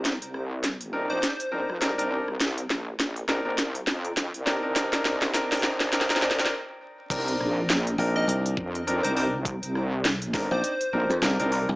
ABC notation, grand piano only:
X:1
M:4/4
L:1/16
Q:"Swing 16ths" 1/4=102
K:Cm
V:1 name="Grand piano"
z6 [CDEB] [CDEd] z2 [CDEB] z [CDEB] [CDEB] [CDEB] z | z6 [CDEB] [CDEB] z6 [CDEB] [CDEB] | [CDEB] [CDEB]3 [CDEB] [CDEB]3 [CDEB] [CDEB] [CDEB] [CDEB] z4 | [CDEB]6 [CDEB] [CDEB]4- [CDEB] [CDEB] [CDEB] [CDEB] z |
z6 [CDEB] [CDEd] z2 [CDEB] z [CDEB] [CDEB] [CDEB] z |]